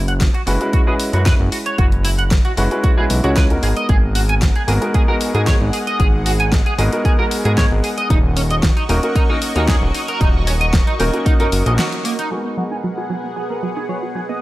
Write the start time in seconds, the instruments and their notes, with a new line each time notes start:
Already playing: analog synth bass F#1
0.08 clean electric guitar F#5, closed hi-hat
0.21 kick, snare, closed hi-hat
0.34 clean electric guitar F#4, closed hi-hat
0.47 analog synth bass F#1, grand piano G#3 C#4 E4 F#4 B4, clean electric guitar F#4, open hi-hat
0.60 grand piano G#3 C#4 E4 F#4 B4, closed hi-hat
0.73 clean electric guitar F#4, kick, closed hi-hat
0.87 grand piano G#3 C#4 E4 F#4 B4, clean electric guitar G#4
1.00 open hi-hat
1.12 analog synth bass F#2, grand piano G#3 C#4 E4 F#4 B4, clean electric guitar F#4, closed hi-hat
1.26 clean electric guitar B4, kick, snare, closed hi-hat
1.40 analog synth bass F#1
1.52 clean electric guitar F#4, open hi-hat
1.66 clean electric guitar C#5, closed hi-hat
1.78 analog synth bass F#1, clean electric guitar F#4, kick, closed hi-hat
1.92 closed hi-hat
2.04 clean electric guitar E4, open hi-hat
2.18 clean electric guitar F#5, closed hi-hat
2.31 kick, snare, closed hi-hat
2.45 clean electric guitar F#4, closed hi-hat
2.57 analog synth bass F#1, grand piano G#3 C#4 E4 F#4 B4, clean electric guitar F#4, open hi-hat
2.71 grand piano G#3 C#4 E4 F#4 B4, closed hi-hat
2.83 clean electric guitar F#4, kick, closed hi-hat
2.97 analog synth bass B1, grand piano G#3 C#4 E4 F#4 B4, clean electric guitar G#4
3.10 analog synth bass B1, open hi-hat
3.23 analog synth bass C#2, grand piano G#3 C#4 E4 F#4 C#5, clean electric guitar F#4, closed hi-hat
3.36 clean electric guitar B4, kick, snare, closed hi-hat
3.49 grand piano G#3 B3 D#4 F#4 A#4, closed hi-hat
3.63 analog synth bass G#1, clean electric guitar G#4, open hi-hat
3.77 clean electric guitar D#5, closed hi-hat
3.89 analog synth bass G#1, analog synth pad G#4 F#5, clean electric guitar G#4, kick, closed hi-hat
4.15 clean electric guitar F#4, open hi-hat
4.29 clean electric guitar G#5, closed hi-hat
4.42 kick, snare, closed hi-hat
4.56 clean electric guitar G#4, closed hi-hat
4.67 analog synth bass G#1, grand piano G#3 B3 D#4 F#4 A#4, clean electric guitar G#4, open hi-hat
4.81 grand piano G#3 B3 D#4 F#4 A#4, closed hi-hat
4.94 clean electric guitar G#4, kick, closed hi-hat
5.08 grand piano G#3 B3 D#4 F#4 A#4, clean electric guitar A#4
5.21 open hi-hat
5.33 analog synth bass G#2, grand piano G#3 B3 D#4 F#4 A#4, clean electric guitar G#4, closed hi-hat
5.47 clean electric guitar C#5, kick, snare, closed hi-hat
5.61 analog synth bass G#1
5.73 clean electric guitar G#4, open hi-hat
5.87 clean electric guitar D#5, closed hi-hat
6.00 analog synth bass G#1, clean electric guitar G#4, kick, closed hi-hat
6.26 clean electric guitar F#4, open hi-hat
6.40 clean electric guitar G#5, closed hi-hat
6.52 kick, snare, closed hi-hat
6.66 clean electric guitar G#4, closed hi-hat
6.78 analog synth bass G#1, grand piano G#3 B3 D#4 F#4 A#4, clean electric guitar G#4, open hi-hat
6.92 grand piano G#3 B3 D#4 F#4 A#4, closed hi-hat
7.05 clean electric guitar G#4, kick, closed hi-hat
7.18 grand piano G#3 B3 D#4 F#4 A#4, clean electric guitar A#4
7.31 open hi-hat
7.44 analog synth bass G#2, grand piano G#3 B3 D#4 F#4 A#4, clean electric guitar G#4, closed hi-hat
7.58 clean electric guitar C#5, kick, snare, closed hi-hat
7.71 analog synth bass G#1
7.84 clean electric guitar G#4, open hi-hat
7.98 clean electric guitar D#5, closed hi-hat
8.10 analog synth bass D#1, clean electric guitar D#4, analog synth pad F#4 D#5 C#6, kick, closed hi-hat
8.37 clean electric guitar C#4, open hi-hat
8.50 clean electric guitar D#5, closed hi-hat
8.63 kick, snare, closed hi-hat
8.77 clean electric guitar D#4, closed hi-hat
8.89 analog synth bass D#1, grand piano A#3 C#4 D#4 F#4 A#4, clean electric guitar D#4, open hi-hat
9.03 grand piano A#3 C#4 D#4 F#4 A#4, closed hi-hat
9.16 clean electric guitar D#4, kick, closed hi-hat
9.29 grand piano A#3 C#4 D#4 F#4 A#4, clean electric guitar D#4
9.42 open hi-hat
9.55 analog synth bass D#2, grand piano A#3 C#4 D#4 F#4 A#4, clean electric guitar D#4, closed hi-hat
9.68 clean electric guitar G#4, kick, snare, closed hi-hat
9.82 analog synth bass D#1
9.95 clean electric guitar D#4, open hi-hat
10.08 clean electric guitar A#4, closed hi-hat
10.21 analog synth bass D#1, clean electric guitar D#4, kick, closed hi-hat
10.47 clean electric guitar C#4, open hi-hat
10.61 clean electric guitar D#5, closed hi-hat
10.73 kick, snare, closed hi-hat
10.87 clean electric guitar D#4, closed hi-hat
10.99 analog synth bass D#1, grand piano A#3 C#4 D#4 F#4 A#4, clean electric guitar D#4, open hi-hat
11.13 grand piano A#3 C#4 D#4 F#4 A#4, closed hi-hat
11.26 clean electric guitar D#4, kick, closed hi-hat
11.39 analog synth bass F#1, grand piano A#3 C#4 D#4 F#4 A#4, clean electric guitar D#4, closed hi-hat
11.52 analog synth bass F#1, open hi-hat
11.65 analog synth bass A#1, grand piano A#3 C#4 D#4 F#4 A#4, clean electric guitar D#5, closed hi-hat
11.79 clean electric guitar F#4, snare, closed hi-hat
11.92 closed hi-hat
12.05 clean electric guitar A#3, open hi-hat
12.19 clean electric guitar D#4, closed hi-hat
12.30 synth arpeggio sound F#3, grand piano G#3 B3 D#4 F#4 A#4, analog synth pad B3 G#4 F#5, clean electric guitar G#4
12.45 synth arpeggio sound B3
12.57 synth arpeggio sound F#3, clean electric guitar F#4
12.71 synth arpeggio sound D#4, clean electric guitar G#5
12.84 synth arpeggio sound F#3
12.98 synth arpeggio sound F#4, clean electric guitar G#4
13.10 synth arpeggio sound F#3, clean electric guitar G#4
13.24 synth arpeggio sound B3
13.36 synth arpeggio sound F#3, clean electric guitar G#4
13.50 synth arpeggio sound B3, clean electric guitar A#4
13.63 synth arpeggio sound F#3
13.77 synth arpeggio sound D#4, clean electric guitar G#4
13.89 synth arpeggio sound F#3, clean electric guitar C#5
14.03 synth arpeggio sound F#4
14.15 synth arpeggio sound F#3, clean electric guitar G#4
14.29 synth arpeggio sound B3, clean electric guitar D#5, closed hi-hat